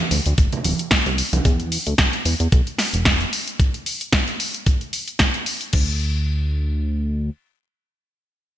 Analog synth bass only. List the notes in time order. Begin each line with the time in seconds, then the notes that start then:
0.11 D2
0.26 D2
0.38 D1
0.65 D1
1.06 C2
1.33 C2
1.45 E2
1.87 D2
2.25 E2
2.40 E2
2.52 B1
2.93 E1
5.73 D2